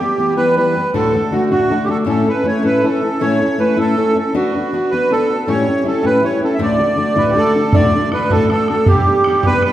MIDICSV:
0, 0, Header, 1, 4, 480
1, 0, Start_track
1, 0, Key_signature, 2, "major"
1, 0, Tempo, 377834
1, 1189, Time_signature, 6, 3, 24, 8
1, 12356, End_track
2, 0, Start_track
2, 0, Title_t, "Accordion"
2, 0, Program_c, 0, 21
2, 0, Note_on_c, 0, 67, 75
2, 430, Note_off_c, 0, 67, 0
2, 471, Note_on_c, 0, 71, 100
2, 705, Note_off_c, 0, 71, 0
2, 724, Note_on_c, 0, 71, 80
2, 1156, Note_off_c, 0, 71, 0
2, 1196, Note_on_c, 0, 69, 78
2, 1682, Note_on_c, 0, 66, 73
2, 1694, Note_off_c, 0, 69, 0
2, 1895, Note_off_c, 0, 66, 0
2, 1920, Note_on_c, 0, 66, 92
2, 2344, Note_on_c, 0, 67, 59
2, 2356, Note_off_c, 0, 66, 0
2, 2399, Note_off_c, 0, 67, 0
2, 2408, Note_on_c, 0, 69, 86
2, 2510, Note_off_c, 0, 69, 0
2, 2653, Note_on_c, 0, 69, 73
2, 2898, Note_on_c, 0, 71, 69
2, 2903, Note_off_c, 0, 69, 0
2, 3130, Note_off_c, 0, 71, 0
2, 3140, Note_on_c, 0, 73, 77
2, 3345, Note_off_c, 0, 73, 0
2, 3374, Note_on_c, 0, 71, 85
2, 3614, Note_on_c, 0, 69, 70
2, 3623, Note_off_c, 0, 71, 0
2, 4080, Note_on_c, 0, 73, 79
2, 4087, Note_off_c, 0, 69, 0
2, 4566, Note_on_c, 0, 71, 67
2, 4575, Note_off_c, 0, 73, 0
2, 4800, Note_off_c, 0, 71, 0
2, 4822, Note_on_c, 0, 69, 88
2, 5299, Note_off_c, 0, 69, 0
2, 5318, Note_on_c, 0, 69, 66
2, 5514, Note_off_c, 0, 69, 0
2, 5542, Note_on_c, 0, 66, 67
2, 6236, Note_on_c, 0, 71, 83
2, 6265, Note_off_c, 0, 66, 0
2, 6493, Note_off_c, 0, 71, 0
2, 6505, Note_on_c, 0, 69, 79
2, 6971, Note_off_c, 0, 69, 0
2, 6974, Note_on_c, 0, 73, 84
2, 7414, Note_off_c, 0, 73, 0
2, 7464, Note_on_c, 0, 69, 69
2, 7687, Note_off_c, 0, 69, 0
2, 7696, Note_on_c, 0, 71, 93
2, 7919, Note_off_c, 0, 71, 0
2, 7932, Note_on_c, 0, 73, 66
2, 8143, Note_off_c, 0, 73, 0
2, 8184, Note_on_c, 0, 69, 73
2, 8309, Note_on_c, 0, 76, 57
2, 8318, Note_off_c, 0, 69, 0
2, 8390, Note_off_c, 0, 76, 0
2, 8415, Note_on_c, 0, 74, 79
2, 9121, Note_on_c, 0, 71, 78
2, 9266, Note_on_c, 0, 67, 53
2, 9278, Note_off_c, 0, 71, 0
2, 9361, Note_off_c, 0, 67, 0
2, 9372, Note_on_c, 0, 69, 86
2, 9557, Note_off_c, 0, 74, 0
2, 9835, Note_on_c, 0, 74, 89
2, 9846, Note_off_c, 0, 69, 0
2, 10284, Note_off_c, 0, 74, 0
2, 10334, Note_on_c, 0, 71, 81
2, 10563, Note_off_c, 0, 71, 0
2, 10568, Note_on_c, 0, 69, 94
2, 10795, Note_off_c, 0, 69, 0
2, 10817, Note_on_c, 0, 69, 87
2, 11026, Note_off_c, 0, 69, 0
2, 11045, Note_on_c, 0, 69, 80
2, 11280, Note_off_c, 0, 69, 0
2, 11281, Note_on_c, 0, 67, 75
2, 12017, Note_off_c, 0, 67, 0
2, 12022, Note_on_c, 0, 71, 101
2, 12242, Note_off_c, 0, 71, 0
2, 12261, Note_on_c, 0, 71, 76
2, 12356, Note_off_c, 0, 71, 0
2, 12356, End_track
3, 0, Start_track
3, 0, Title_t, "Steel-string acoustic guitar"
3, 0, Program_c, 1, 25
3, 6, Note_on_c, 1, 67, 47
3, 19, Note_on_c, 1, 59, 40
3, 30, Note_on_c, 1, 55, 33
3, 229, Note_off_c, 1, 55, 0
3, 230, Note_on_c, 1, 52, 43
3, 236, Note_off_c, 1, 59, 0
3, 238, Note_off_c, 1, 67, 0
3, 244, Note_on_c, 1, 55, 48
3, 252, Note_on_c, 1, 59, 56
3, 254, Note_on_c, 1, 67, 61
3, 455, Note_off_c, 1, 67, 0
3, 459, Note_off_c, 1, 59, 0
3, 463, Note_off_c, 1, 55, 0
3, 466, Note_off_c, 1, 52, 0
3, 471, Note_on_c, 1, 67, 60
3, 474, Note_on_c, 1, 59, 57
3, 478, Note_on_c, 1, 55, 59
3, 485, Note_on_c, 1, 52, 49
3, 709, Note_off_c, 1, 52, 0
3, 715, Note_off_c, 1, 55, 0
3, 725, Note_off_c, 1, 67, 0
3, 725, Note_on_c, 1, 52, 55
3, 726, Note_off_c, 1, 59, 0
3, 730, Note_on_c, 1, 55, 54
3, 739, Note_on_c, 1, 59, 60
3, 745, Note_on_c, 1, 67, 62
3, 947, Note_off_c, 1, 67, 0
3, 957, Note_off_c, 1, 52, 0
3, 960, Note_off_c, 1, 55, 0
3, 962, Note_on_c, 1, 67, 46
3, 964, Note_off_c, 1, 59, 0
3, 978, Note_on_c, 1, 59, 37
3, 989, Note_on_c, 1, 55, 31
3, 1192, Note_off_c, 1, 67, 0
3, 1193, Note_on_c, 1, 45, 71
3, 1194, Note_on_c, 1, 38, 75
3, 1195, Note_off_c, 1, 55, 0
3, 1197, Note_on_c, 1, 50, 74
3, 1200, Note_off_c, 1, 59, 0
3, 1200, Note_on_c, 1, 62, 68
3, 1207, Note_on_c, 1, 57, 69
3, 1210, Note_on_c, 1, 66, 72
3, 1431, Note_off_c, 1, 66, 0
3, 1443, Note_off_c, 1, 57, 0
3, 1446, Note_off_c, 1, 38, 0
3, 1446, Note_off_c, 1, 45, 0
3, 1446, Note_on_c, 1, 66, 41
3, 1448, Note_off_c, 1, 50, 0
3, 1449, Note_off_c, 1, 62, 0
3, 1458, Note_on_c, 1, 57, 42
3, 1463, Note_on_c, 1, 62, 41
3, 1475, Note_on_c, 1, 50, 33
3, 1663, Note_off_c, 1, 50, 0
3, 1663, Note_off_c, 1, 62, 0
3, 1677, Note_off_c, 1, 66, 0
3, 1678, Note_on_c, 1, 50, 52
3, 1678, Note_on_c, 1, 62, 52
3, 1679, Note_off_c, 1, 57, 0
3, 1695, Note_on_c, 1, 57, 60
3, 1696, Note_on_c, 1, 66, 57
3, 1901, Note_off_c, 1, 66, 0
3, 1910, Note_off_c, 1, 50, 0
3, 1910, Note_off_c, 1, 62, 0
3, 1911, Note_off_c, 1, 57, 0
3, 1916, Note_on_c, 1, 66, 49
3, 1926, Note_on_c, 1, 57, 58
3, 1926, Note_on_c, 1, 62, 52
3, 1929, Note_on_c, 1, 50, 54
3, 1930, Note_on_c, 1, 45, 56
3, 1935, Note_on_c, 1, 38, 48
3, 2150, Note_off_c, 1, 50, 0
3, 2159, Note_off_c, 1, 62, 0
3, 2161, Note_off_c, 1, 57, 0
3, 2165, Note_on_c, 1, 50, 56
3, 2167, Note_off_c, 1, 66, 0
3, 2174, Note_off_c, 1, 45, 0
3, 2175, Note_on_c, 1, 62, 54
3, 2176, Note_off_c, 1, 38, 0
3, 2176, Note_on_c, 1, 57, 51
3, 2184, Note_on_c, 1, 66, 68
3, 2371, Note_off_c, 1, 66, 0
3, 2382, Note_off_c, 1, 57, 0
3, 2386, Note_on_c, 1, 66, 46
3, 2390, Note_off_c, 1, 62, 0
3, 2397, Note_off_c, 1, 50, 0
3, 2397, Note_on_c, 1, 57, 45
3, 2405, Note_on_c, 1, 62, 37
3, 2416, Note_on_c, 1, 50, 34
3, 2605, Note_off_c, 1, 57, 0
3, 2613, Note_on_c, 1, 45, 64
3, 2615, Note_off_c, 1, 50, 0
3, 2617, Note_off_c, 1, 62, 0
3, 2618, Note_off_c, 1, 66, 0
3, 2620, Note_on_c, 1, 57, 63
3, 2622, Note_on_c, 1, 61, 73
3, 2623, Note_on_c, 1, 69, 71
3, 2626, Note_on_c, 1, 64, 67
3, 2859, Note_off_c, 1, 69, 0
3, 2872, Note_off_c, 1, 64, 0
3, 2875, Note_off_c, 1, 45, 0
3, 2875, Note_on_c, 1, 69, 48
3, 2879, Note_off_c, 1, 57, 0
3, 2880, Note_off_c, 1, 61, 0
3, 2888, Note_on_c, 1, 64, 40
3, 2893, Note_on_c, 1, 61, 41
3, 3080, Note_off_c, 1, 61, 0
3, 3094, Note_on_c, 1, 57, 49
3, 3095, Note_off_c, 1, 64, 0
3, 3096, Note_on_c, 1, 61, 51
3, 3097, Note_off_c, 1, 69, 0
3, 3110, Note_on_c, 1, 64, 60
3, 3112, Note_on_c, 1, 69, 53
3, 3329, Note_off_c, 1, 69, 0
3, 3335, Note_off_c, 1, 61, 0
3, 3335, Note_off_c, 1, 64, 0
3, 3337, Note_off_c, 1, 57, 0
3, 3344, Note_on_c, 1, 69, 55
3, 3350, Note_on_c, 1, 64, 54
3, 3351, Note_on_c, 1, 61, 47
3, 3355, Note_on_c, 1, 57, 51
3, 3359, Note_on_c, 1, 45, 43
3, 3581, Note_off_c, 1, 57, 0
3, 3591, Note_off_c, 1, 61, 0
3, 3596, Note_on_c, 1, 57, 50
3, 3598, Note_off_c, 1, 64, 0
3, 3601, Note_off_c, 1, 69, 0
3, 3607, Note_on_c, 1, 61, 49
3, 3608, Note_off_c, 1, 45, 0
3, 3613, Note_on_c, 1, 64, 55
3, 3618, Note_on_c, 1, 69, 59
3, 3813, Note_off_c, 1, 69, 0
3, 3823, Note_off_c, 1, 64, 0
3, 3828, Note_on_c, 1, 69, 38
3, 3831, Note_off_c, 1, 61, 0
3, 3832, Note_off_c, 1, 57, 0
3, 3838, Note_on_c, 1, 64, 39
3, 3846, Note_on_c, 1, 61, 31
3, 4062, Note_off_c, 1, 61, 0
3, 4064, Note_off_c, 1, 69, 0
3, 4069, Note_off_c, 1, 64, 0
3, 4072, Note_on_c, 1, 45, 63
3, 4078, Note_on_c, 1, 61, 71
3, 4080, Note_on_c, 1, 57, 71
3, 4082, Note_on_c, 1, 64, 66
3, 4089, Note_on_c, 1, 69, 72
3, 4301, Note_off_c, 1, 69, 0
3, 4310, Note_off_c, 1, 64, 0
3, 4317, Note_on_c, 1, 69, 43
3, 4324, Note_off_c, 1, 45, 0
3, 4325, Note_on_c, 1, 64, 43
3, 4327, Note_off_c, 1, 61, 0
3, 4328, Note_off_c, 1, 57, 0
3, 4341, Note_on_c, 1, 61, 36
3, 4544, Note_off_c, 1, 61, 0
3, 4546, Note_off_c, 1, 64, 0
3, 4549, Note_on_c, 1, 57, 51
3, 4552, Note_off_c, 1, 69, 0
3, 4559, Note_on_c, 1, 61, 53
3, 4561, Note_on_c, 1, 64, 57
3, 4571, Note_on_c, 1, 69, 64
3, 4765, Note_off_c, 1, 69, 0
3, 4773, Note_off_c, 1, 64, 0
3, 4780, Note_on_c, 1, 69, 52
3, 4783, Note_off_c, 1, 61, 0
3, 4784, Note_off_c, 1, 57, 0
3, 4788, Note_on_c, 1, 64, 55
3, 4798, Note_on_c, 1, 61, 48
3, 4800, Note_on_c, 1, 45, 42
3, 4800, Note_on_c, 1, 57, 55
3, 5025, Note_off_c, 1, 57, 0
3, 5027, Note_off_c, 1, 61, 0
3, 5034, Note_off_c, 1, 64, 0
3, 5038, Note_off_c, 1, 69, 0
3, 5040, Note_on_c, 1, 57, 48
3, 5043, Note_on_c, 1, 61, 53
3, 5048, Note_off_c, 1, 45, 0
3, 5049, Note_on_c, 1, 64, 56
3, 5061, Note_on_c, 1, 69, 60
3, 5255, Note_off_c, 1, 69, 0
3, 5267, Note_off_c, 1, 64, 0
3, 5270, Note_off_c, 1, 61, 0
3, 5270, Note_on_c, 1, 69, 44
3, 5273, Note_off_c, 1, 57, 0
3, 5282, Note_on_c, 1, 64, 39
3, 5285, Note_on_c, 1, 61, 37
3, 5503, Note_on_c, 1, 59, 54
3, 5505, Note_off_c, 1, 69, 0
3, 5510, Note_off_c, 1, 64, 0
3, 5512, Note_off_c, 1, 61, 0
3, 5521, Note_on_c, 1, 62, 72
3, 5521, Note_on_c, 1, 66, 79
3, 5526, Note_on_c, 1, 71, 70
3, 5758, Note_off_c, 1, 71, 0
3, 5760, Note_off_c, 1, 59, 0
3, 5768, Note_off_c, 1, 62, 0
3, 5768, Note_off_c, 1, 66, 0
3, 5773, Note_on_c, 1, 71, 42
3, 5789, Note_on_c, 1, 66, 35
3, 5803, Note_on_c, 1, 62, 40
3, 5999, Note_off_c, 1, 71, 0
3, 6000, Note_off_c, 1, 62, 0
3, 6006, Note_on_c, 1, 59, 45
3, 6008, Note_off_c, 1, 66, 0
3, 6015, Note_on_c, 1, 62, 55
3, 6024, Note_on_c, 1, 66, 58
3, 6029, Note_on_c, 1, 71, 61
3, 6232, Note_off_c, 1, 59, 0
3, 6237, Note_off_c, 1, 62, 0
3, 6241, Note_off_c, 1, 66, 0
3, 6244, Note_off_c, 1, 71, 0
3, 6256, Note_on_c, 1, 66, 49
3, 6258, Note_on_c, 1, 71, 60
3, 6264, Note_on_c, 1, 62, 50
3, 6272, Note_on_c, 1, 59, 47
3, 6478, Note_off_c, 1, 59, 0
3, 6485, Note_off_c, 1, 62, 0
3, 6493, Note_on_c, 1, 59, 54
3, 6496, Note_off_c, 1, 66, 0
3, 6497, Note_off_c, 1, 71, 0
3, 6501, Note_on_c, 1, 62, 55
3, 6510, Note_on_c, 1, 66, 56
3, 6518, Note_on_c, 1, 71, 67
3, 6708, Note_off_c, 1, 71, 0
3, 6716, Note_off_c, 1, 66, 0
3, 6719, Note_off_c, 1, 59, 0
3, 6723, Note_off_c, 1, 62, 0
3, 6724, Note_on_c, 1, 71, 41
3, 6732, Note_on_c, 1, 66, 39
3, 6751, Note_on_c, 1, 62, 33
3, 6951, Note_off_c, 1, 71, 0
3, 6953, Note_on_c, 1, 45, 66
3, 6955, Note_off_c, 1, 66, 0
3, 6958, Note_off_c, 1, 62, 0
3, 6962, Note_on_c, 1, 55, 73
3, 6964, Note_on_c, 1, 61, 64
3, 6969, Note_on_c, 1, 64, 77
3, 6971, Note_on_c, 1, 67, 72
3, 7178, Note_off_c, 1, 67, 0
3, 7190, Note_off_c, 1, 64, 0
3, 7194, Note_on_c, 1, 67, 38
3, 7204, Note_off_c, 1, 45, 0
3, 7206, Note_off_c, 1, 61, 0
3, 7206, Note_on_c, 1, 64, 39
3, 7208, Note_off_c, 1, 55, 0
3, 7221, Note_on_c, 1, 61, 41
3, 7414, Note_on_c, 1, 55, 52
3, 7416, Note_off_c, 1, 64, 0
3, 7417, Note_off_c, 1, 61, 0
3, 7425, Note_off_c, 1, 67, 0
3, 7431, Note_on_c, 1, 64, 59
3, 7433, Note_on_c, 1, 61, 64
3, 7441, Note_on_c, 1, 67, 52
3, 7637, Note_off_c, 1, 67, 0
3, 7645, Note_off_c, 1, 64, 0
3, 7648, Note_off_c, 1, 61, 0
3, 7651, Note_off_c, 1, 55, 0
3, 7652, Note_on_c, 1, 67, 57
3, 7660, Note_on_c, 1, 64, 46
3, 7663, Note_on_c, 1, 61, 52
3, 7666, Note_on_c, 1, 55, 45
3, 7669, Note_on_c, 1, 45, 51
3, 7889, Note_off_c, 1, 55, 0
3, 7899, Note_off_c, 1, 61, 0
3, 7905, Note_off_c, 1, 64, 0
3, 7905, Note_on_c, 1, 55, 52
3, 7911, Note_off_c, 1, 67, 0
3, 7914, Note_on_c, 1, 61, 49
3, 7920, Note_on_c, 1, 64, 62
3, 7922, Note_off_c, 1, 45, 0
3, 7926, Note_on_c, 1, 67, 69
3, 8125, Note_off_c, 1, 67, 0
3, 8140, Note_on_c, 1, 67, 40
3, 8144, Note_off_c, 1, 64, 0
3, 8145, Note_off_c, 1, 55, 0
3, 8150, Note_off_c, 1, 61, 0
3, 8160, Note_on_c, 1, 64, 39
3, 8171, Note_on_c, 1, 61, 37
3, 8364, Note_on_c, 1, 38, 75
3, 8368, Note_off_c, 1, 64, 0
3, 8372, Note_off_c, 1, 61, 0
3, 8373, Note_on_c, 1, 57, 76
3, 8375, Note_on_c, 1, 45, 76
3, 8377, Note_off_c, 1, 67, 0
3, 8377, Note_on_c, 1, 50, 76
3, 8378, Note_on_c, 1, 62, 62
3, 8382, Note_on_c, 1, 66, 69
3, 8606, Note_off_c, 1, 66, 0
3, 8617, Note_off_c, 1, 57, 0
3, 8620, Note_off_c, 1, 62, 0
3, 8621, Note_on_c, 1, 66, 49
3, 8629, Note_off_c, 1, 38, 0
3, 8632, Note_off_c, 1, 50, 0
3, 8632, Note_on_c, 1, 57, 39
3, 8635, Note_off_c, 1, 45, 0
3, 8635, Note_on_c, 1, 62, 38
3, 8647, Note_on_c, 1, 50, 35
3, 8835, Note_off_c, 1, 50, 0
3, 8847, Note_off_c, 1, 57, 0
3, 8847, Note_off_c, 1, 62, 0
3, 8850, Note_on_c, 1, 50, 44
3, 8860, Note_off_c, 1, 66, 0
3, 8862, Note_on_c, 1, 57, 57
3, 8862, Note_on_c, 1, 62, 48
3, 8876, Note_on_c, 1, 66, 53
3, 9075, Note_off_c, 1, 66, 0
3, 9081, Note_off_c, 1, 50, 0
3, 9083, Note_off_c, 1, 57, 0
3, 9084, Note_off_c, 1, 62, 0
3, 9090, Note_on_c, 1, 66, 60
3, 9096, Note_on_c, 1, 50, 47
3, 9098, Note_on_c, 1, 57, 66
3, 9099, Note_on_c, 1, 62, 62
3, 9101, Note_on_c, 1, 45, 58
3, 9105, Note_on_c, 1, 38, 54
3, 9323, Note_off_c, 1, 50, 0
3, 9339, Note_off_c, 1, 57, 0
3, 9339, Note_on_c, 1, 50, 58
3, 9341, Note_off_c, 1, 62, 0
3, 9347, Note_off_c, 1, 66, 0
3, 9354, Note_on_c, 1, 57, 66
3, 9356, Note_on_c, 1, 62, 59
3, 9358, Note_off_c, 1, 45, 0
3, 9360, Note_off_c, 1, 38, 0
3, 9362, Note_on_c, 1, 66, 72
3, 9570, Note_off_c, 1, 66, 0
3, 9577, Note_off_c, 1, 57, 0
3, 9582, Note_off_c, 1, 50, 0
3, 9584, Note_off_c, 1, 62, 0
3, 9586, Note_on_c, 1, 66, 40
3, 9592, Note_on_c, 1, 57, 43
3, 9599, Note_on_c, 1, 62, 45
3, 9604, Note_on_c, 1, 50, 35
3, 9822, Note_off_c, 1, 50, 0
3, 9822, Note_off_c, 1, 66, 0
3, 9823, Note_off_c, 1, 62, 0
3, 9823, Note_on_c, 1, 38, 60
3, 9826, Note_off_c, 1, 57, 0
3, 9832, Note_on_c, 1, 45, 76
3, 9838, Note_on_c, 1, 50, 65
3, 9838, Note_on_c, 1, 62, 82
3, 9843, Note_on_c, 1, 66, 91
3, 9849, Note_on_c, 1, 57, 74
3, 10079, Note_off_c, 1, 38, 0
3, 10082, Note_off_c, 1, 66, 0
3, 10084, Note_off_c, 1, 45, 0
3, 10084, Note_off_c, 1, 57, 0
3, 10087, Note_off_c, 1, 50, 0
3, 10087, Note_off_c, 1, 62, 0
3, 10097, Note_on_c, 1, 66, 45
3, 10099, Note_on_c, 1, 57, 45
3, 10111, Note_on_c, 1, 62, 43
3, 10115, Note_on_c, 1, 50, 39
3, 10295, Note_off_c, 1, 50, 0
3, 10307, Note_off_c, 1, 62, 0
3, 10310, Note_on_c, 1, 50, 47
3, 10313, Note_off_c, 1, 57, 0
3, 10313, Note_off_c, 1, 66, 0
3, 10322, Note_on_c, 1, 62, 55
3, 10328, Note_on_c, 1, 57, 56
3, 10328, Note_on_c, 1, 66, 58
3, 10537, Note_off_c, 1, 66, 0
3, 10539, Note_off_c, 1, 57, 0
3, 10545, Note_off_c, 1, 50, 0
3, 10551, Note_off_c, 1, 62, 0
3, 10552, Note_on_c, 1, 66, 59
3, 10555, Note_on_c, 1, 57, 59
3, 10559, Note_on_c, 1, 50, 48
3, 10564, Note_on_c, 1, 62, 54
3, 10568, Note_on_c, 1, 45, 52
3, 10572, Note_on_c, 1, 38, 49
3, 10778, Note_off_c, 1, 50, 0
3, 10785, Note_off_c, 1, 62, 0
3, 10793, Note_on_c, 1, 50, 58
3, 10800, Note_off_c, 1, 57, 0
3, 10800, Note_on_c, 1, 62, 61
3, 10805, Note_off_c, 1, 66, 0
3, 10812, Note_off_c, 1, 45, 0
3, 10815, Note_off_c, 1, 38, 0
3, 10815, Note_on_c, 1, 57, 59
3, 10819, Note_on_c, 1, 66, 58
3, 11022, Note_off_c, 1, 66, 0
3, 11029, Note_off_c, 1, 57, 0
3, 11030, Note_off_c, 1, 50, 0
3, 11034, Note_off_c, 1, 62, 0
3, 11037, Note_on_c, 1, 66, 45
3, 11044, Note_on_c, 1, 57, 41
3, 11048, Note_on_c, 1, 62, 36
3, 11062, Note_on_c, 1, 50, 38
3, 11254, Note_off_c, 1, 50, 0
3, 11259, Note_on_c, 1, 55, 66
3, 11263, Note_off_c, 1, 62, 0
3, 11269, Note_off_c, 1, 66, 0
3, 11271, Note_on_c, 1, 59, 68
3, 11272, Note_off_c, 1, 57, 0
3, 11278, Note_on_c, 1, 62, 73
3, 11283, Note_on_c, 1, 67, 74
3, 11505, Note_off_c, 1, 67, 0
3, 11517, Note_off_c, 1, 62, 0
3, 11519, Note_off_c, 1, 55, 0
3, 11520, Note_on_c, 1, 67, 40
3, 11525, Note_off_c, 1, 59, 0
3, 11532, Note_on_c, 1, 62, 46
3, 11542, Note_on_c, 1, 59, 36
3, 11755, Note_off_c, 1, 67, 0
3, 11761, Note_off_c, 1, 62, 0
3, 11762, Note_off_c, 1, 59, 0
3, 11766, Note_on_c, 1, 55, 48
3, 11775, Note_on_c, 1, 62, 57
3, 11778, Note_on_c, 1, 59, 53
3, 11789, Note_on_c, 1, 67, 51
3, 11994, Note_off_c, 1, 55, 0
3, 11996, Note_off_c, 1, 67, 0
3, 11998, Note_off_c, 1, 62, 0
3, 12000, Note_off_c, 1, 59, 0
3, 12011, Note_on_c, 1, 67, 49
3, 12018, Note_on_c, 1, 62, 53
3, 12019, Note_on_c, 1, 59, 46
3, 12031, Note_on_c, 1, 55, 52
3, 12254, Note_off_c, 1, 55, 0
3, 12256, Note_off_c, 1, 67, 0
3, 12259, Note_off_c, 1, 62, 0
3, 12260, Note_off_c, 1, 59, 0
3, 12269, Note_on_c, 1, 55, 52
3, 12279, Note_on_c, 1, 59, 64
3, 12282, Note_on_c, 1, 62, 65
3, 12286, Note_on_c, 1, 67, 68
3, 12356, Note_off_c, 1, 55, 0
3, 12356, Note_off_c, 1, 59, 0
3, 12356, Note_off_c, 1, 62, 0
3, 12356, Note_off_c, 1, 67, 0
3, 12356, End_track
4, 0, Start_track
4, 0, Title_t, "Bodhran"
4, 9814, Note_on_c, 9, 64, 83
4, 9941, Note_off_c, 9, 64, 0
4, 10070, Note_on_c, 9, 64, 22
4, 10197, Note_off_c, 9, 64, 0
4, 10313, Note_on_c, 9, 64, 50
4, 10440, Note_off_c, 9, 64, 0
4, 10545, Note_on_c, 9, 64, 74
4, 10672, Note_off_c, 9, 64, 0
4, 10797, Note_on_c, 9, 64, 47
4, 10924, Note_off_c, 9, 64, 0
4, 11029, Note_on_c, 9, 64, 49
4, 11156, Note_off_c, 9, 64, 0
4, 11259, Note_on_c, 9, 64, 80
4, 11386, Note_off_c, 9, 64, 0
4, 11512, Note_on_c, 9, 64, 20
4, 11639, Note_off_c, 9, 64, 0
4, 11743, Note_on_c, 9, 64, 55
4, 11870, Note_off_c, 9, 64, 0
4, 11982, Note_on_c, 9, 64, 81
4, 12109, Note_off_c, 9, 64, 0
4, 12227, Note_on_c, 9, 64, 46
4, 12354, Note_off_c, 9, 64, 0
4, 12356, End_track
0, 0, End_of_file